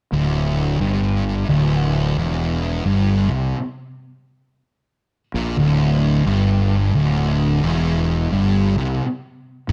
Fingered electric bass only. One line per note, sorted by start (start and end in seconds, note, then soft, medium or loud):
0.13 0.77 D1 loud
0.80 1.45 G1 medium
1.48 2.13 D1 medium
2.17 2.81 E1 medium
2.85 3.27 G1 medium
3.30 3.52 C2 medium
5.34 5.57 A#1 medium
5.58 6.23 D1 medium
6.26 6.91 G1 medium
6.95 7.60 D1 medium
7.64 8.28 E1 medium
8.32 8.74 G1 medium
8.77 8.99 C2 medium
9.69 9.72 A1 medium